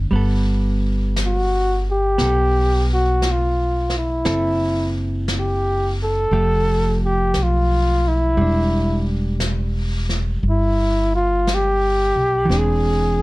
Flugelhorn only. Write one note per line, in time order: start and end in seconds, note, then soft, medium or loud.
1.26 1.85 F#4 medium
1.92 2.87 G4 medium
2.94 3.33 F#4 medium
3.32 3.95 F4 medium
3.98 4.93 E4 medium
5.39 5.98 G4 medium
6.04 6.99 A4 medium
7.06 7.45 G4 medium
7.43 8.09 F4 medium
8.08 9.08 E4 medium
10.50 11.11 E4 medium
11.15 11.56 F4 medium
11.55 12.60 G4 medium
12.59 13.22 G#4 medium